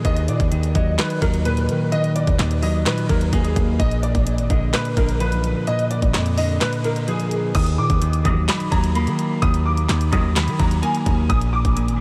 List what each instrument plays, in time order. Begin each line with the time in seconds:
0.05 808-style bass D#2, clean electric guitar D#3, grand piano D#5, kick, closed hi-hat
0.16 closed hi-hat
0.28 808-style bass A#2, grand piano D5, closed hi-hat
0.40 808-style bass D#2, kick, closed hi-hat
0.52 clean electric guitar D#3, closed hi-hat
0.63 closed hi-hat
0.75 808-style bass D#2, clean electric guitar F#3, grand piano D#5, kick, closed hi-hat
0.98 clean electric guitar D#3, grand piano B4, snare, clap, closed hi-hat
1.10 closed hi-hat
1.21 808-style bass D#2, clean electric guitar F#3, grand piano A#4, kick, closed hi-hat
1.34 closed hi-hat
1.45 clean electric guitar A#2, grand piano B4, closed hi-hat
1.57 closed hi-hat
1.69 808-style bass D#3, closed hi-hat
1.92 clean electric guitar D#3, grand piano D#5, closed hi-hat
2.04 closed hi-hat
2.16 grand piano D5, closed hi-hat
2.27 808-style bass D#2, kick, closed hi-hat
2.39 808-style bass D#2, clean electric guitar D#3, snare, clap, closed hi-hat
2.51 closed hi-hat
2.62 clean electric guitar F#3, grand piano D#5, open hi-hat
2.86 808-style bass A#2, clean electric guitar D#3, grand piano B4, snare, clap, closed hi-hat
2.98 closed hi-hat
3.09 808-style bass D#2, clean electric guitar F#3, grand piano A#4, kick, closed hi-hat
3.21 closed hi-hat
3.32 808-style bass D#2, clean electric guitar A#3, grand piano G#4, kick, closed hi-hat
3.45 closed hi-hat
3.56 808-style bass D#2, kick, closed hi-hat
3.79 808-style bass A#1, clean electric guitar A#2, grand piano D#5, kick, closed hi-hat
3.91 closed hi-hat
4.03 grand piano D5, closed hi-hat
4.15 808-style bass A#1, kick, closed hi-hat
4.27 clean electric guitar A#2, closed hi-hat
4.38 808-style bass G#1, closed hi-hat
4.50 808-style bass A#1, clean electric guitar D3, grand piano D#5, kick, closed hi-hat
4.73 clean electric guitar A#2, grand piano B4, snare, clap, closed hi-hat
4.85 closed hi-hat
4.97 808-style bass A#1, clean electric guitar D3, grand piano A#4, kick, closed hi-hat
5.09 closed hi-hat
5.20 clean electric guitar F3, grand piano B4, closed hi-hat
5.32 808-style bass B1, closed hi-hat
5.44 closed hi-hat
5.67 clean electric guitar A#2, grand piano D#5, closed hi-hat
5.79 closed hi-hat
5.91 grand piano D5, closed hi-hat
6.02 808-style bass A#1, kick, closed hi-hat
6.14 808-style bass F2, clean electric guitar A#2, snare, clap, closed hi-hat
6.26 closed hi-hat
6.37 clean electric guitar D3, grand piano D#5, open hi-hat
6.61 clean electric guitar A#2, grand piano B4, snare, clap, closed hi-hat
6.73 closed hi-hat
6.84 clean electric guitar D3, grand piano A#4, closed hi-hat
6.96 closed hi-hat
7.08 clean electric guitar F3, grand piano G#4, closed hi-hat
7.20 closed hi-hat
7.31 closed hi-hat
7.55 808-style bass D#2, clean electric guitar D#3, grand piano D#6, kick, closed hi-hat, crash
7.66 closed hi-hat
7.78 808-style bass A#2, grand piano D6
7.90 808-style bass D#2, kick, closed hi-hat
8.02 clean electric guitar D#3, closed hi-hat
8.13 closed hi-hat
8.25 string section A#1 F#2 D#3, 808-style bass D#2, clean electric guitar F#3, grand piano D#6, kick, closed hi-hat
8.48 clean electric guitar D#3, grand piano B5, snare, clap, closed hi-hat
8.60 closed hi-hat
8.71 808-style bass D#2, clean electric guitar F#3, grand piano A#5, kick, closed hi-hat
8.84 closed hi-hat
8.95 clean electric guitar A#3, grand piano B5, closed hi-hat
9.07 808-style bass D#3, closed hi-hat
9.19 closed hi-hat
9.42 808-style bass D#2, clean electric guitar D#3, grand piano D#6, kick, closed hi-hat
9.54 closed hi-hat
9.66 grand piano D6
9.77 closed hi-hat
9.89 808-style bass D#2, clean electric guitar D#3, snare, clap, closed hi-hat
10.01 closed hi-hat
10.12 string section A#1 F#2 D#3, 808-style bass D#2, clean electric guitar F#3, grand piano D#6, kick, closed hi-hat
10.36 clean electric guitar D#3, grand piano B5, snare, clap, closed hi-hat
10.48 808-style bass D#3, closed hi-hat
10.59 808-style bass D#2, clean electric guitar F#3, grand piano A#5, kick, closed hi-hat
10.71 closed hi-hat
10.82 clean electric guitar A#3, grand piano G#5, closed hi-hat
10.95 closed hi-hat
11.06 808-style bass D#2, kick, closed hi-hat
11.29 808-style bass A#1, clean electric guitar A#2, grand piano D#6, kick, closed hi-hat
11.41 closed hi-hat
11.53 grand piano D6
11.65 808-style bass A#1, kick, closed hi-hat
11.77 clean electric guitar A#2, closed hi-hat
11.88 808-style bass G#1, closed hi-hat